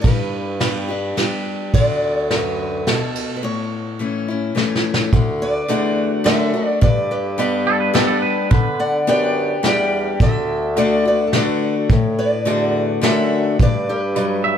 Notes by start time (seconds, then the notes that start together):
0.02 G2 B4, kick, ride
0.60 G3 B3 D4 G4, snare, ride
0.89 D4 G4
1.17 G3 B3 D4 G4, snare, ride
1.74 D2 D3 D5, kick, ride
2.16 C#5
2.31 F#2 B4, snare, ride
2.87 B2 A4, snare, ride
3.15 ride
3.36 B4
3.43 A2 C#5
3.99 E3 A3 C#4 E4
4.28 C#4 E4
4.55 E3 A3 C#4 E4, snare
4.75 snare
4.94 snare
5.13 D2 D3, kick, closed hi-hat
5.42 B4 D5
5.68 E2 D3 A3 D4 F#4 A4 D5, closed hi-hat
6.24 F#2 D3 A3 D4 F#4 A4 D5 E5, snare, closed hi-hat
6.54 D4 F#4
6.67 D5
6.81 G2 B4 D5, kick, closed hi-hat
7.11 G4 B4
7.38 G3 B3 D4 G4 B4 D5, closed hi-hat
7.67 A4
7.80 B4
7.94 G3 B3 D4 G4 A4 B4 D5, snare, closed hi-hat
8.07 A4
8.22 B4
8.51 D3 B4, kick, closed hi-hat
8.80 D5 F#5
9.07 F#2 B3 D4 G4 B4 D5 G5, closed hi-hat
9.63 E2 G3 B3 D4 G4 B4 D5 G5, snare, closed hi-hat
10.20 D2 D3 A4 E5, kick, closed hi-hat
10.76 D3 A3 D4 F#4 A4 D5, closed hi-hat
11.05 D4 F#4 B4 D5
11.27 A4
11.32 D3 A3 D4 F#4 A4 B4 D5, snare, closed hi-hat
11.90 A2, kick, closed hi-hat
12.19 B4 D5
12.45 E2 D3 A3 D4 F#4 A4 D5, closed hi-hat
13.02 F#2 D3 A3 D4 F#4 A4 D5 E5, snare, closed hi-hat
13.59 G2 B4 D5, kick, closed hi-hat
13.89 G4 B4
14.15 F#3 G3 B4 D5, closed hi-hat
14.44 E5